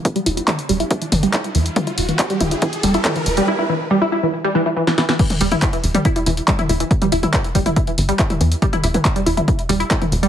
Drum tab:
CC |----------------|----------------|----------------|x---------------|
HH |xxoxxxoxxxoxxxox|xxoxxxoxxxoxxxox|----------------|xxoxxxoxxxoxxxox|
CP |----x-------x---|----x-------x---|----------------|----x-------x---|
SD |----------------|----------------|-------------ooo|----------------|
T2 |----o-----o-----|o-----o-----o---|----------------|-o-o---o-----o--|
BD |o---o---o---o---|o---o---o---o---|----------------|o---o---o---o---|

CC |----------------|----------------|
HH |xxoxxxoxxxoxxxox|xxoxxxoxxxoxxxox|
CP |----x-------x---|----x-------x---|
SD |----------------|----------------|
T2 |-o-o---o-----o--|-o-o---o-----o--|
BD |o---o-o-o---o---|o---o---o---o---|